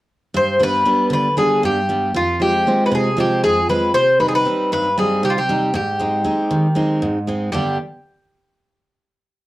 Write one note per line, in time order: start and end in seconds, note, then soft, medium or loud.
0.34 0.85 G2 medium
0.34 0.62 C5 medium
0.60 0.84 G3 soft
0.60 0.84 B3 soft
0.60 0.85 D4 medium
0.60 1.10 B4 medium
0.85 1.27 G3 soft
0.85 1.27 B3 soft
0.85 1.28 D4 medium
1.10 1.61 D3 medium
1.10 1.37 B4 medium
1.37 1.78 G3 soft
1.37 1.79 B3 soft
1.37 1.79 D4 soft
1.37 1.62 G#4 medium
1.63 2.13 G2 medium
1.63 2.12 G4 medium
1.89 2.10 G3 soft
1.89 2.10 B3 soft
1.89 2.10 D4 soft
2.14 2.65 F2 medium
2.14 2.40 F4 medium
2.40 2.66 F3 soft
2.40 2.66 G#3 soft
2.40 2.66 C4 soft
2.40 2.85 G4 medium
2.67 3.08 F3 soft
2.67 3.08 G#3 soft
2.67 3.08 C4 medium
2.86 2.92 B4 medium
2.92 3.42 C3 medium
2.92 3.18 G#4 medium
3.17 3.58 F3 soft
3.17 3.59 G#3 soft
3.17 3.59 C4 medium
3.17 3.43 G4 medium
3.44 3.94 F2 medium
3.44 3.69 G#4 medium
3.69 3.90 F3 soft
3.69 3.90 G#3 soft
3.69 3.91 C4 soft
3.69 3.94 B4 medium
3.94 4.45 C3 medium
3.94 4.19 C5 loud
4.20 4.45 G3 soft
4.20 4.45 C4 soft
4.20 4.45 D#4 soft
4.20 4.27 B4 medium
4.28 4.35 G#4 medium
4.35 4.70 B4 medium
4.45 4.87 G3 soft
4.45 4.87 C4 soft
4.45 4.87 D#4 soft
4.72 5.22 G2 medium
4.72 4.97 B4 medium
4.97 5.39 G3 soft
4.97 5.39 C4 soft
4.97 5.39 D#4 soft
4.97 5.22 G#4 medium
5.23 5.73 C3 medium
5.23 5.31 G4 medium
5.30 5.37 F4 medium
5.38 5.74 G4 medium
5.49 5.70 G3 soft
5.49 5.70 C4 soft
5.49 5.70 D#4 soft
5.74 6.24 G#2 medium
5.74 6.99 G4 medium
5.99 6.23 G#3 soft
5.99 6.24 C4 soft
5.99 6.24 D#4 medium
6.24 6.66 G#3 soft
6.24 6.66 C4 soft
6.24 6.67 D#4 soft
6.51 7.01 D#3 medium
6.75 7.17 G#3 soft
6.75 7.17 C4 soft
6.75 7.18 D#4 medium
7.02 7.52 G#2 medium
7.27 7.48 G#3 soft
7.27 7.48 C4 soft
7.27 7.49 D#4 soft
7.52 7.77 G2 medium
7.52 7.77 D3 soft
7.52 7.77 G3 soft
7.52 7.78 B3 soft
7.52 7.78 D4 medium
7.52 7.77 G4 medium